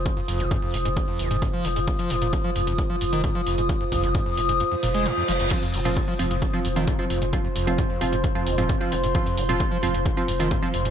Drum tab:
CC |----------------|----------------|----------------|x---------------|
HH |x-oxx-oxx-oxx-oo|xooxx-oxx-oxx-ox|x-oxx-oxx-oxx-oo|xooxx-oxx-oxx-ox|
BD |o---o---o---o---|o---o---o---o---|o-o-o-----------|o---o---o---o---|

CC |----------------|----------------|
HH |x-oxx-oxx-oxx-oo|xooxx-oxx-oxx-ox|
BD |o---o---o---o---|o---o---o---o---|